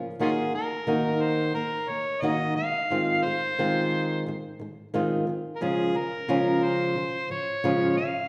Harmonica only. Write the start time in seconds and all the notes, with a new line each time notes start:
0.21 C#4 F4 G#4
0.55 A#4
1.21 C5
1.55 A#4
1.88 C#5
2.22 D#5
2.56 F5
3.24 C5
5.56 A#4
5.62 G#4
5.96 A#4
6.63 C5
7.31 C#5
7.97 F5